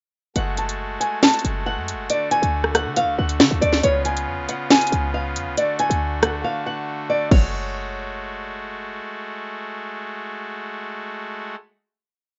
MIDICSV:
0, 0, Header, 1, 5, 480
1, 0, Start_track
1, 0, Key_signature, 3, "minor"
1, 0, Tempo, 434783
1, 394, Time_signature, 4, 2, 24, 8
1, 13673, End_track
2, 0, Start_track
2, 0, Title_t, "Nylon-string guitar"
2, 0, Program_c, 0, 24
2, 398, Note_on_c, 0, 78, 89
2, 593, Note_off_c, 0, 78, 0
2, 642, Note_on_c, 0, 81, 68
2, 1090, Note_off_c, 0, 81, 0
2, 1109, Note_on_c, 0, 80, 73
2, 1308, Note_off_c, 0, 80, 0
2, 1364, Note_on_c, 0, 81, 88
2, 1811, Note_off_c, 0, 81, 0
2, 1836, Note_on_c, 0, 78, 83
2, 2286, Note_off_c, 0, 78, 0
2, 2318, Note_on_c, 0, 74, 85
2, 2513, Note_off_c, 0, 74, 0
2, 2553, Note_on_c, 0, 80, 84
2, 3005, Note_off_c, 0, 80, 0
2, 3036, Note_on_c, 0, 78, 77
2, 3232, Note_off_c, 0, 78, 0
2, 3276, Note_on_c, 0, 77, 90
2, 3472, Note_off_c, 0, 77, 0
2, 3517, Note_on_c, 0, 78, 75
2, 3967, Note_off_c, 0, 78, 0
2, 3990, Note_on_c, 0, 74, 89
2, 4189, Note_off_c, 0, 74, 0
2, 4234, Note_on_c, 0, 73, 92
2, 4431, Note_off_c, 0, 73, 0
2, 4474, Note_on_c, 0, 80, 68
2, 4926, Note_off_c, 0, 80, 0
2, 4956, Note_on_c, 0, 78, 78
2, 5152, Note_off_c, 0, 78, 0
2, 5200, Note_on_c, 0, 80, 91
2, 5649, Note_off_c, 0, 80, 0
2, 5674, Note_on_c, 0, 77, 86
2, 6126, Note_off_c, 0, 77, 0
2, 6154, Note_on_c, 0, 74, 87
2, 6351, Note_off_c, 0, 74, 0
2, 6397, Note_on_c, 0, 80, 81
2, 6847, Note_off_c, 0, 80, 0
2, 6877, Note_on_c, 0, 78, 76
2, 7073, Note_off_c, 0, 78, 0
2, 7113, Note_on_c, 0, 77, 78
2, 7310, Note_off_c, 0, 77, 0
2, 7357, Note_on_c, 0, 78, 77
2, 7807, Note_off_c, 0, 78, 0
2, 7834, Note_on_c, 0, 74, 90
2, 8031, Note_off_c, 0, 74, 0
2, 8074, Note_on_c, 0, 73, 86
2, 9470, Note_off_c, 0, 73, 0
2, 13673, End_track
3, 0, Start_track
3, 0, Title_t, "Pipe organ"
3, 0, Program_c, 1, 19
3, 397, Note_on_c, 1, 57, 66
3, 398, Note_on_c, 1, 56, 72
3, 398, Note_on_c, 1, 66, 78
3, 2295, Note_off_c, 1, 57, 0
3, 2297, Note_off_c, 1, 56, 0
3, 2317, Note_on_c, 1, 50, 72
3, 2317, Note_on_c, 1, 57, 68
3, 4198, Note_off_c, 1, 66, 0
3, 4216, Note_off_c, 1, 57, 0
3, 4217, Note_off_c, 1, 50, 0
3, 4235, Note_on_c, 1, 59, 66
3, 4235, Note_on_c, 1, 65, 81
3, 4236, Note_on_c, 1, 49, 74
3, 6136, Note_off_c, 1, 49, 0
3, 6136, Note_off_c, 1, 59, 0
3, 6136, Note_off_c, 1, 65, 0
3, 6154, Note_on_c, 1, 66, 81
3, 6155, Note_on_c, 1, 50, 73
3, 6155, Note_on_c, 1, 57, 66
3, 8053, Note_off_c, 1, 57, 0
3, 8053, Note_off_c, 1, 66, 0
3, 8056, Note_off_c, 1, 50, 0
3, 8075, Note_on_c, 1, 56, 72
3, 8075, Note_on_c, 1, 57, 65
3, 8075, Note_on_c, 1, 66, 80
3, 12754, Note_off_c, 1, 56, 0
3, 12754, Note_off_c, 1, 57, 0
3, 12754, Note_off_c, 1, 66, 0
3, 13673, End_track
4, 0, Start_track
4, 0, Title_t, "808-style bass"
4, 0, Program_c, 2, 38
4, 395, Note_on_c, 2, 30, 115
4, 1086, Note_off_c, 2, 30, 0
4, 1596, Note_on_c, 2, 30, 108
4, 1956, Note_on_c, 2, 42, 99
4, 1973, Note_off_c, 2, 30, 0
4, 2138, Note_on_c, 2, 30, 99
4, 2154, Note_off_c, 2, 42, 0
4, 2307, Note_off_c, 2, 30, 0
4, 2675, Note_on_c, 2, 38, 106
4, 3156, Note_on_c, 2, 50, 100
4, 3172, Note_off_c, 2, 38, 0
4, 3336, Note_on_c, 2, 38, 98
4, 3352, Note_off_c, 2, 50, 0
4, 3506, Note_off_c, 2, 38, 0
4, 3516, Note_on_c, 2, 38, 111
4, 3755, Note_on_c, 2, 50, 105
4, 3772, Note_off_c, 2, 38, 0
4, 3869, Note_off_c, 2, 50, 0
4, 3875, Note_on_c, 2, 38, 101
4, 3988, Note_off_c, 2, 38, 0
4, 3994, Note_on_c, 2, 38, 106
4, 4225, Note_off_c, 2, 38, 0
4, 4233, Note_on_c, 2, 37, 112
4, 4714, Note_on_c, 2, 41, 103
4, 4731, Note_off_c, 2, 37, 0
4, 4834, Note_on_c, 2, 37, 100
4, 4850, Note_off_c, 2, 41, 0
4, 4948, Note_off_c, 2, 37, 0
4, 5434, Note_on_c, 2, 37, 112
4, 5914, Note_on_c, 2, 41, 104
4, 5930, Note_off_c, 2, 37, 0
4, 6033, Note_on_c, 2, 37, 101
4, 6050, Note_off_c, 2, 41, 0
4, 6148, Note_off_c, 2, 37, 0
4, 6513, Note_on_c, 2, 38, 108
4, 7114, Note_off_c, 2, 38, 0
4, 8075, Note_on_c, 2, 30, 113
4, 9951, Note_off_c, 2, 30, 0
4, 13673, End_track
5, 0, Start_track
5, 0, Title_t, "Drums"
5, 395, Note_on_c, 9, 42, 96
5, 505, Note_off_c, 9, 42, 0
5, 633, Note_on_c, 9, 42, 77
5, 744, Note_off_c, 9, 42, 0
5, 762, Note_on_c, 9, 42, 71
5, 872, Note_off_c, 9, 42, 0
5, 1114, Note_on_c, 9, 42, 79
5, 1225, Note_off_c, 9, 42, 0
5, 1355, Note_on_c, 9, 38, 126
5, 1355, Note_on_c, 9, 42, 71
5, 1415, Note_off_c, 9, 42, 0
5, 1415, Note_on_c, 9, 42, 73
5, 1466, Note_off_c, 9, 38, 0
5, 1474, Note_off_c, 9, 42, 0
5, 1474, Note_on_c, 9, 42, 68
5, 1534, Note_off_c, 9, 42, 0
5, 1534, Note_on_c, 9, 42, 68
5, 1597, Note_off_c, 9, 42, 0
5, 1597, Note_on_c, 9, 42, 73
5, 1708, Note_off_c, 9, 42, 0
5, 2079, Note_on_c, 9, 42, 88
5, 2189, Note_off_c, 9, 42, 0
5, 2315, Note_on_c, 9, 42, 98
5, 2425, Note_off_c, 9, 42, 0
5, 2553, Note_on_c, 9, 42, 76
5, 2664, Note_off_c, 9, 42, 0
5, 2682, Note_on_c, 9, 42, 71
5, 2793, Note_off_c, 9, 42, 0
5, 2915, Note_on_c, 9, 37, 68
5, 3025, Note_off_c, 9, 37, 0
5, 3035, Note_on_c, 9, 37, 90
5, 3035, Note_on_c, 9, 42, 77
5, 3145, Note_off_c, 9, 37, 0
5, 3145, Note_off_c, 9, 42, 0
5, 3273, Note_on_c, 9, 42, 93
5, 3383, Note_off_c, 9, 42, 0
5, 3634, Note_on_c, 9, 42, 81
5, 3744, Note_off_c, 9, 42, 0
5, 3753, Note_on_c, 9, 38, 116
5, 3864, Note_off_c, 9, 38, 0
5, 3998, Note_on_c, 9, 42, 79
5, 4109, Note_off_c, 9, 42, 0
5, 4113, Note_on_c, 9, 38, 62
5, 4224, Note_off_c, 9, 38, 0
5, 4234, Note_on_c, 9, 42, 95
5, 4344, Note_off_c, 9, 42, 0
5, 4471, Note_on_c, 9, 42, 79
5, 4582, Note_off_c, 9, 42, 0
5, 4600, Note_on_c, 9, 42, 70
5, 4711, Note_off_c, 9, 42, 0
5, 4954, Note_on_c, 9, 42, 81
5, 5064, Note_off_c, 9, 42, 0
5, 5194, Note_on_c, 9, 42, 71
5, 5195, Note_on_c, 9, 38, 125
5, 5254, Note_off_c, 9, 42, 0
5, 5254, Note_on_c, 9, 42, 72
5, 5305, Note_off_c, 9, 38, 0
5, 5313, Note_off_c, 9, 42, 0
5, 5313, Note_on_c, 9, 42, 71
5, 5375, Note_off_c, 9, 42, 0
5, 5375, Note_on_c, 9, 42, 69
5, 5437, Note_off_c, 9, 42, 0
5, 5437, Note_on_c, 9, 42, 72
5, 5548, Note_off_c, 9, 42, 0
5, 5918, Note_on_c, 9, 42, 87
5, 6029, Note_off_c, 9, 42, 0
5, 6155, Note_on_c, 9, 42, 97
5, 6265, Note_off_c, 9, 42, 0
5, 6393, Note_on_c, 9, 42, 74
5, 6503, Note_off_c, 9, 42, 0
5, 6522, Note_on_c, 9, 42, 71
5, 6632, Note_off_c, 9, 42, 0
5, 6874, Note_on_c, 9, 42, 80
5, 6875, Note_on_c, 9, 37, 91
5, 6985, Note_off_c, 9, 37, 0
5, 6985, Note_off_c, 9, 42, 0
5, 8075, Note_on_c, 9, 36, 101
5, 8075, Note_on_c, 9, 49, 89
5, 8185, Note_off_c, 9, 36, 0
5, 8186, Note_off_c, 9, 49, 0
5, 13673, End_track
0, 0, End_of_file